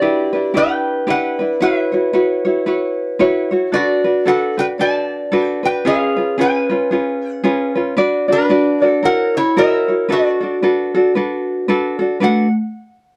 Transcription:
Already playing: resonator guitar played with a steel bar F#4 D5, vibraphone G4
0.02 ukulele D4 E4 G4 B4
0.33 ukulele D4 E4 B4
0.54 ukulele D4 E4 G4 B4, vibraphone B4, resonator guitar played with a steel bar B4 G5
1.07 ukulele D4 E4 G4 B4, vibraphone B4, resonator guitar played with a steel bar B4 F#5
1.39 ukulele D4 E4 B4
1.60 ukulele E4 F#4 B4 C#5, vibraphone B4, resonator guitar played with a steel bar B4 E5
1.92 ukulele E4 F#4 C#5
2.13 ukulele E4 F#4 B4 C#5
2.45 ukulele E4 F#4 C#5
2.66 ukulele E4 F#4 B4 C#5
3.19 ukulele E4 F#4 B4 C#5
3.51 ukulele E4 F#4 C#5
3.72 ukulele D4 F#4 A4 B4, vibraphone F#4, resonator guitar played with a steel bar F#4 D5
4.04 ukulele D4 F#4 B4
4.25 ukulele D4 F#4 A4 B4, vibraphone A4, resonator guitar played with a steel bar A4 F#5
4.57 ukulele D4 F#4 B4, vibraphone B4, resonator guitar played with a steel bar B4 G5
4.78 ukulele D4 F#4 A4 B4, vibraphone D5, resonator guitar played with a steel bar D5 A5
5.32 ukulele D4 F#4 A4 B4
5.44 resonator guitar played with a steel bar G5
5.63 ukulele D4 F#4 B4, vibraphone B4, resonator guitar played with a steel bar B4 G5
5.85 ukulele C#4 F4 G#4 B4, vibraphone G#4, resonator guitar played with a steel bar G#4 F5
6.16 ukulele C#4 F4 B4
6.38 ukulele C#4 F4 G#4 B4, vibraphone B4, resonator guitar played with a steel bar B4 G#5
6.70 ukulele C#4 F4 B4
6.91 ukulele C#4 F4 G#4 B4
7.31 resonator guitar played with a steel bar F#5
7.44 ukulele C#4 F4 G#4 B4
7.75 ukulele C#4 F4 B4
7.97 ukulele D4 F#4 B4 D5
8.28 vibraphone D4, ukulele D4 F#4 D5
8.32 resonator guitar played with a steel bar D4 B4
8.50 ukulele D4 F#4 B4 D5
8.82 ukulele D4 F#4 D5
8.87 resonator guitar played with a steel bar A4
9.03 ukulele E4 F#4 A#4 C#5, vibraphone A#4, resonator guitar played with a steel bar A#4 F#5
9.35 vibraphone E4, resonator guitar played with a steel bar E4 C#5
9.57 ukulele E4 F#4 A#4 C#5, vibraphone A#4, resonator guitar played with a steel bar A#4 E5
9.88 ukulele E4 F#4 C#5
10.09 ukulele D4 F#4 A4 B4, vibraphone F#4, resonator guitar played with a steel bar D5
10.13 resonator guitar played with a steel bar F#4
10.41 ukulele D4 F#4 A4
10.63 ukulele D4 F#4 A4 B4
10.95 ukulele D4 F#4 A4
11.15 ukulele D4 F#4 A4 B4
11.68 ukulele D4 F#4 A4 B4
11.99 ukulele D4 F#4 A4
12.20 vibraphone A3, ukulele D4 F#4 A4 B4, resonator guitar played with a steel bar F#5

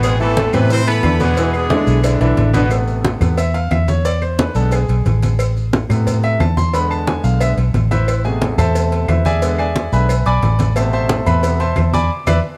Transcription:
Already playing: fingered electric bass A1, grand piano B2 B3 B4
0.03 horn section G#3 B3 C4 G#4, cowbell, high conga, claves, maracas
0.20 grand piano E3 E4 A4, trombone section E3, horn section A3 C4 E4 A4, high conga, maracas
0.36 cowbell, high conga, maracas
0.53 fingered electric bass A2, grand piano C3 C4 B4, trombone section E3, horn section B3 B4, cowbell, high conga, low conga, claves, maracas
0.70 horn section C4 E4 C5, cowbell, high conga, maracas
0.87 grand piano E3 E4 A4, horn section B3 E4 B4, cowbell, high conga, maracas
1.03 fingered electric bass E2, trombone section D3, cowbell, high conga, claves, maracas
1.20 grand piano B2 B3 B4, horn section G#3 B3 D4 G#4, high conga, maracas
1.37 grand piano B2 B3 B4, trombone section E3, cowbell, high conga, maracas
1.53 horn section G#3 B3 D4 G#4, high conga, claves, maracas
1.70 grand piano D3 D4 E4, trombone section G#3, cowbell, high conga, maracas
1.87 fingered electric bass B1, high conga, maracas
2.04 grand piano D3 D4 E4, cowbell, claves, maracas
2.21 fingered electric bass B1, grand piano D3 D4 E4, trombone section E3, cowbell, high conga, maracas
2.37 fingered electric bass A1, cowbell, high conga, maracas
2.53 grand piano B2 B3 B4, trombone section D3, cowbell, high conga, maracas
2.70 grand piano C3 A3 B3, cowbell, high conga, claves, maracas
2.88 high conga, maracas
3.04 cowbell, high conga, maracas
3.20 fingered electric bass E2, grand piano C3 A3 B3, cowbell, high conga, low conga, claves, maracas
3.38 grand piano E5, cowbell, high conga, maracas
3.54 grand piano F5, cowbell, high conga, maracas
3.71 fingered electric bass E2, grand piano E5, cowbell, high conga, claves, maracas
3.88 grand piano C#5, high conga, maracas
4.05 grand piano D5, cowbell, high conga, maracas
4.22 grand piano C5, high conga, claves, maracas
4.39 grand piano B4, cowbell, high conga, maracas
4.55 fingered electric bass B1, grand piano D3 G#3 B3 A4, high conga, maracas
4.72 grand piano G#4, cowbell, high conga, claves, maracas
4.88 fingered electric bass B1, cowbell, high conga, maracas
5.06 fingered electric bass A1, cowbell, high conga, maracas
5.23 cowbell, high conga, maracas
5.39 cowbell, high conga, claves, maracas
5.57 high conga, maracas
5.73 cowbell, high conga, maracas
5.89 fingered electric bass A2, grand piano C3 A3 B3, cowbell, high conga, low conga, claves, maracas
6.07 cowbell, high conga, low conga, maracas
6.23 grand piano E5, cowbell, high conga, maracas
6.40 fingered electric bass E2, grand piano A5, cowbell, high conga, claves, maracas
6.57 grand piano C6, high conga, maracas
6.73 grand piano D3 G#3 B3 B5, cowbell, high conga, maracas
6.91 grand piano A5, high conga, claves, maracas
7.07 grand piano G#5, cowbell, high conga, maracas
7.24 fingered electric bass B1, grand piano F5, high conga, maracas
7.40 grand piano D3 G#3 B3 E5, cowbell, high conga, claves, maracas
7.57 fingered electric bass B1, cowbell, high conga, maracas
7.74 fingered electric bass A1, cowbell, high conga, maracas
7.91 grand piano E4 B4 C5 E5, cowbell, high conga, maracas
8.08 cowbell, high conga, claves, maracas
8.24 grand piano B2 C3 A3 G#4 G#5, high conga, maracas
8.41 cowbell, high conga, maracas
8.58 fingered electric bass E2, grand piano A4 C5 E5 A5, cowbell, high conga, low conga, claves, maracas
8.75 cowbell, high conga, maracas
8.92 cowbell, high conga, maracas
9.08 fingered electric bass E2, grand piano E4 B4 C5 E5, cowbell, high conga, claves, maracas
9.25 grand piano G#4 D5 E5 G#5, high conga, maracas
9.42 grand piano D3 G#3 B3, cowbell, high conga, maracas
9.58 grand piano G#4 D5 E5 G#5, high conga, claves, maracas
9.76 cowbell, high conga, maracas
9.93 fingered electric bass B1, grand piano D3 G#3 B3 B4 E5 G#5 B5, high conga, maracas
10.09 cowbell, high conga, claves, maracas
10.26 fingered electric bass B1, grand piano D5 G#5 B5 D6, cowbell, high conga, maracas
10.43 fingered electric bass A1, cowbell, high conga, maracas
10.59 cowbell, high conga, maracas
10.76 grand piano B2 C3 A3 A4 C5 E5 A5, cowbell, high conga, claves, maracas
10.93 grand piano C5 E5 A5 C6, high conga, maracas
11.09 cowbell, high conga, maracas
11.26 fingered electric bass E2, grand piano B4 E5 B5, cowbell, high conga, low conga, claves, maracas
11.43 grand piano C3 A3 B3, cowbell, high conga, maracas
11.60 grand piano C5 E5 A5 C6, cowbell, high conga, maracas
11.76 fingered electric bass E2, cowbell, high conga, claves, maracas
11.93 grand piano D5 G#5 B5 D6, high conga, maracas
12.27 fingered electric bass E2, grand piano B4 D5 E5, cowbell, high conga, claves, maracas

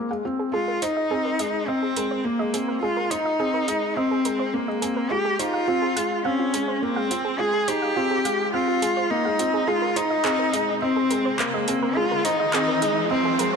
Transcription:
0.11 felt piano G#3, synth arpeggio sound F5
0.25 felt piano C4, synth arpeggio sound F4
0.39 synth arpeggio sound G#4
0.53 felt piano G#3, cello F4, synth arpeggio sound G#4
0.68 synth arpeggio sound A#4
0.82 cello D#4, felt piano D#4, synth arpeggio sound C5, closed hi-hat
0.97 synth arpeggio sound D#5
1.11 felt piano C4, synth arpeggio sound G#4
1.25 synth arpeggio sound A#4
1.39 felt piano G#3, synth arpeggio sound D#5, closed hi-hat
1.67 cello C4, felt piano C4, synth arpeggio sound D#5
1.83 synth arpeggio sound G#4
1.96 felt piano G#3, synth arpeggio sound A#4, closed hi-hat
2.11 synth arpeggio sound C5
2.25 cello A#3, felt piano A#3
2.39 felt piano G#3, synth arpeggio sound D#5
2.54 felt piano C4, synth arpeggio sound G#4, closed hi-hat
2.68 synth arpeggio sound A#4
2.82 felt piano G#3, cello F4, synth arpeggio sound G#4
2.97 synth arpeggio sound A#4
3.10 cello D#4, felt piano D#4, synth arpeggio sound C5, closed hi-hat
3.25 synth arpeggio sound D#5
3.40 felt piano C4, synth arpeggio sound G#4
3.54 synth arpeggio sound A#4
3.68 felt piano G#3, synth arpeggio sound D#5, closed hi-hat
3.96 cello C4, felt piano C4, synth arpeggio sound D#5
4.11 synth arpeggio sound G#4
4.25 felt piano G#3, synth arpeggio sound A#4, closed hi-hat
4.39 synth arpeggio sound C5
4.54 cello A#3, felt piano A#3
4.68 felt piano G#3, synth arpeggio sound D#5
4.82 felt piano C4, synth arpeggio sound G#4, closed hi-hat
4.97 synth arpeggio sound A#4
5.11 felt piano G#3, synth arpeggio sound F4, cello G4
5.25 synth arpeggio sound G#4
5.39 felt piano D#4, cello F4, synth arpeggio sound C5, closed hi-hat
5.54 synth arpeggio sound F5
5.68 felt piano C4, synth arpeggio sound F4
5.82 synth arpeggio sound G#4
5.96 felt piano G#3, synth arpeggio sound F5, closed hi-hat
6.25 felt piano C4, cello C#4, synth arpeggio sound F5
6.39 synth arpeggio sound F4
6.54 felt piano G#3, synth arpeggio sound G#4, closed hi-hat
6.68 synth arpeggio sound C5
6.75 cello C#4
6.82 felt piano A#3, cello C4
6.96 felt piano G#3, synth arpeggio sound F5
7.11 felt piano C4, synth arpeggio sound F4, closed hi-hat
7.25 synth arpeggio sound G#4
7.39 felt piano G#3, synth arpeggio sound F4, cello G#4
7.54 synth arpeggio sound G#4
7.68 felt piano D#4, cello G4, synth arpeggio sound C5, closed hi-hat
7.82 synth arpeggio sound F5
7.96 felt piano C4, synth arpeggio sound F4
8.11 synth arpeggio sound G#4
8.25 felt piano G#3, synth arpeggio sound F5, closed hi-hat
8.54 felt piano C4, cello F4, synth arpeggio sound F5
8.68 synth arpeggio sound F4
8.82 felt piano G#3, synth arpeggio sound G#4, closed hi-hat
8.97 synth arpeggio sound C5
9.10 felt piano A#3, cello D#4
9.25 felt piano G#3, synth arpeggio sound F5
9.39 felt piano C4, synth arpeggio sound F4, closed hi-hat
9.54 synth arpeggio sound G#4
9.67 felt piano G#3, cello F4, synth arpeggio sound G#4, riser
9.82 synth arpeggio sound A#4
9.96 felt piano D#4, cello D#4, synth arpeggio sound C5, closed hi-hat
10.10 synth arpeggio sound D#5
10.24 felt piano C4, synth arpeggio sound G#4, clap
10.39 synth arpeggio sound A#4
10.53 felt piano G#3, synth arpeggio sound D#5, closed hi-hat
10.82 cello C4, felt piano C4, synth arpeggio sound D#5
10.96 synth arpeggio sound G#4
11.11 felt piano G#3, synth arpeggio sound A#4, closed hi-hat
11.25 synth arpeggio sound C5
11.39 felt piano A#3, cello A#3, clap
11.54 felt piano G#3, synth arpeggio sound D#5
11.68 felt piano C4, synth arpeggio sound G#4, closed hi-hat
11.82 synth arpeggio sound A#4
11.96 felt piano G#3, cello F4, synth arpeggio sound G#4
12.11 synth arpeggio sound A#4
12.25 cello D#4, felt piano D#4, synth arpeggio sound C5, closed hi-hat
12.40 synth arpeggio sound D#5
12.53 felt piano C4, synth arpeggio sound G#4, clap
12.68 synth arpeggio sound A#4
12.82 felt piano G#3, synth arpeggio sound D#5, closed hi-hat
13.11 cello C4, felt piano C4, synth arpeggio sound D#5
13.25 synth arpeggio sound G#4
13.39 felt piano G#3, synth arpeggio sound A#4, closed hi-hat

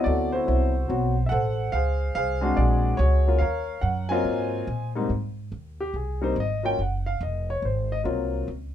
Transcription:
Already playing: grand piano F#3 B3 C4 E4
0.04 upright bass D2, grand piano F#4 A4 D5
0.32 grand piano E4 F#4 C5
0.46 upright bass C2, grand piano F#3 B3 C4 E4
0.88 upright bass B1, grand piano F#3 B3 C4 F#4
1.26 grand piano E5 F#5
1.31 upright bass A1, grand piano A4 C5
1.72 upright bass C#2, grand piano G#4 C5 F5
2.15 upright bass C2, grand piano G#4 C5 F5
2.41 grand piano G#3 C4 D4 F#4
2.57 upright bass A#1, grand piano F#4 G#4 D5
2.97 upright bass C#2, grand piano F#4 G#4 C#5
3.27 grand piano F#3 A#3 C#4 F4
3.38 upright bass D#2, grand piano A#4 C#5 F5
3.81 upright bass F#2, grand piano F#5
4.09 grand piano F#3 A#3 C4 F4 C5 D#5 G#5
4.25 upright bass G#2
4.67 upright bass A#2
4.96 grand piano G#2 G3 A#3 C4 D#4
5.10 upright bass G#2
5.52 upright bass D#2
5.80 grand piano G4
5.94 upright bass C2, grand piano G#4
6.21 grand piano G3 A#3 C4 D#4 C5
6.36 upright bass G#1
6.40 grand piano D#5
6.63 grand piano F#3 A#3 C#4 F4 G5
6.79 upright bass F#1, grand piano F#5
7.06 grand piano F5
7.21 upright bass F1, grand piano D#5
7.50 grand piano C#5
7.62 upright bass G#1, grand piano C5
7.92 grand piano D#5
8.04 upright bass C2, grand piano F#3 A#3 C4 F4
8.48 upright bass C#2

